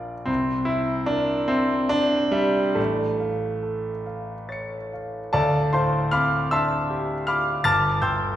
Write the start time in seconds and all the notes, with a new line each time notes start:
Already playing: A#1 D4 A#4 D5 F5
0.26 C2 C4
0.65 E4 E5
1.06 D4 A#4
1.48 C4 E5
1.89 D4 D5
2.32 G3 E5
2.75 A1 A3
3.20 F5
3.63 A4
4.06 F5
4.49 C#5 A6 C#7
4.93 F5
5.33 D2 A4 D5 F5 A5
5.73 A2 C5 F5 A5 C6
6.11 C4 F5 B5 D6 F6
6.51 D4 E5 A5 C6 E6
6.90 G4
7.27 F4 F5 B5 D6 F6
7.64 G1 A5 D6 F6 A6
8.02 D2 G5 C6 E6 G6